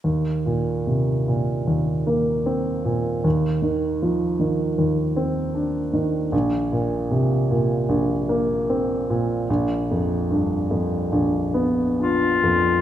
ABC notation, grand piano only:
X:1
M:4/4
L:1/8
Q:1/4=76
K:Bbmix
V:1 name="Grand piano" clef=bass
E,, B,, C, B,, E,, B, C B,, | E,, E, F, E, E,, C D E, | B,,, B,, C, B,, B,,, B, C B,, | B,,, F,, G,, F,, B,,, _C D F,, |]